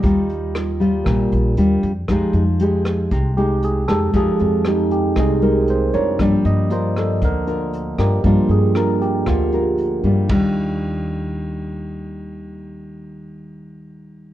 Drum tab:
RD |--------|--------|--------|--------|
HH |xxxxxxxx|xxxxxxxx|xxxxxxxx|xxxxxxxx|
SD |--r-r---|r--r---r|--r-r---|r--r---r|
FT |--------|--------|--------|--------|
BD |o---o---|o---o---|o---o---|o---o---|

RD |--------|b-------|--------|
HH |xxxxxxxx|--------|--------|
SD |--r-r---|--------|--------|
FT |--------|o-------|--------|
BD |o---o---|o-------|--------|